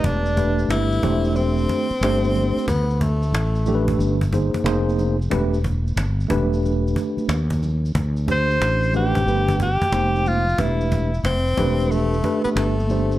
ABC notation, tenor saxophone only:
X:1
M:4/4
L:1/16
Q:"Swing 16ths" 1/4=91
K:C
V:1 name="Tenor saxophone"
z4 E4 C8 | B,2 A,8 z6 | z16 | z16 |
z4 C4 A,3 B, A,4 |]